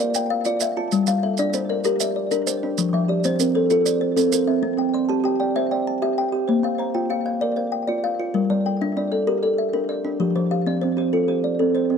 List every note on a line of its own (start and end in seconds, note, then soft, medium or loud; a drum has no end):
0.00 0.30 A#4 medium
0.00 0.30 D5 medium
0.00 0.15 E5 medium
0.00 0.13 F5 medium
0.14 0.60 F5 medium
0.14 0.61 G5 medium
0.14 maracas medium
0.30 0.76 F5 medium
0.45 0.76 F4 medium
0.45 0.77 D5 medium
0.45 maracas medium
0.60 1.07 E5 medium
0.60 1.07 F5 medium
0.60 maracas medium
0.77 1.07 F4 medium
0.77 1.08 A5 medium
0.92 1.23 G3 medium
0.92 maracas medium
1.07 1.38 G3 medium
1.07 1.54 F5 medium
1.07 maracas medium
1.23 1.69 A4 medium
1.23 1.69 E5 medium
1.37 1.70 D4 medium
1.37 1.68 D5 medium
1.37 1.85 D5 medium
1.37 maracas medium
1.53 1.85 D4 medium
1.53 2.00 C5 medium
1.53 maracas medium
1.69 1.84 A#4 medium
1.69 2.00 D5 medium
1.84 2.16 G4 medium
1.84 2.16 A#4 medium
1.84 maracas medium
2.00 2.46 D5 medium
2.00 2.46 E5 medium
2.00 maracas medium
2.16 2.62 D5 medium
2.31 2.62 D4 medium
2.31 2.62 A#4 medium
2.31 maracas medium
2.47 2.93 C5 medium
2.47 2.93 D5 medium
2.47 maracas medium
2.63 2.93 D4 medium
2.78 3.09 F3 medium
2.78 maracas medium
2.93 3.24 F3 medium
2.93 3.40 E5 medium
3.08 3.55 G4 medium
3.08 3.55 D5 medium
3.24 3.55 C4 medium
3.24 3.54 C5 medium
3.24 3.71 C5 medium
3.24 maracas medium
3.39 3.70 C4 medium
3.39 3.86 A#4 medium
3.39 maracas medium
3.55 3.69 A4 medium
3.55 3.84 C5 medium
3.70 4.01 F4 medium
3.70 4.01 A4 medium
3.70 maracas medium
3.85 4.31 C5 medium
3.85 4.32 D5 medium
3.85 maracas medium
4.01 4.47 C5 medium
4.16 4.46 C4 medium
4.16 4.47 A4 medium
4.16 maracas medium
4.32 4.78 A#4 medium
4.32 4.79 C5 medium
4.32 maracas loud
4.47 4.76 C4 medium
4.47 4.78 E5 medium
4.63 4.94 C4 medium
4.77 5.09 C4 medium
4.77 5.24 G5 medium
4.94 5.40 D5 medium
4.94 5.40 C6 medium
5.09 5.40 G4 medium
5.09 5.55 A5 medium
5.24 5.55 G4 medium
5.24 5.71 G5 medium
5.40 5.70 D5 medium
5.40 5.70 G5 medium
5.56 5.87 C5 medium
5.56 5.87 E5 medium
5.71 6.18 D5 medium
5.71 6.17 G5 medium
5.87 6.33 A5 medium
6.02 6.31 G4 medium
6.02 6.33 E5 medium
6.18 6.64 G5 medium
6.32 6.64 G4 medium
6.48 6.79 A#3 medium
6.48 6.77 C5 medium
6.63 6.94 A#3 medium
6.63 7.09 F5 medium
6.78 7.25 C5 medium
6.78 7.26 A#5 medium
6.94 7.26 F4 medium
6.94 7.41 G5 medium
7.10 7.41 F4 medium
7.10 7.57 F5 medium
7.26 7.56 F5 medium
7.41 7.73 A#4 medium
7.41 7.72 D5 medium
7.56 8.03 C5 medium
7.56 8.03 F5 medium
7.72 8.19 G5 medium
7.87 8.18 F4 medium
7.87 8.19 D5 medium
8.04 8.50 F5 medium
8.20 8.50 F4 medium
8.34 8.65 G3 medium
8.34 8.65 A#4 medium
8.50 8.81 G3 medium
8.50 8.96 D5 medium
8.66 9.12 A4 medium
8.66 9.12 G5 medium
8.81 9.12 D4 medium
8.81 9.27 E5 medium
8.97 9.27 D4 medium
8.97 9.43 D5 medium
9.12 9.42 A4 medium
9.12 9.41 D5 medium
9.27 9.58 G4 medium
9.27 9.58 A#4 medium
9.43 9.89 A4 medium
9.43 9.88 D5 medium
9.58 10.05 E5 medium
9.73 10.03 D4 medium
9.73 10.05 A#4 medium
9.89 10.35 D5 medium
10.05 10.36 D4 medium
10.20 10.51 F3 medium
10.20 10.50 G4 medium
10.36 10.67 F3 medium
10.36 10.80 C5 medium
10.51 10.97 G4 medium
10.51 10.97 F5 medium
10.66 10.97 C4 medium
10.66 11.13 D5 medium
10.81 11.13 C4 medium
10.81 11.28 C5 medium
10.97 11.27 G4 medium
10.97 11.27 C5 medium
11.13 11.44 F4 medium
11.13 11.44 A4 medium
11.28 11.75 G4 medium
11.28 11.74 C5 medium
11.44 11.90 D5 medium
11.59 11.89 C4 medium
11.59 11.90 A4 medium
11.75 11.98 C5 medium
11.90 11.98 C4 medium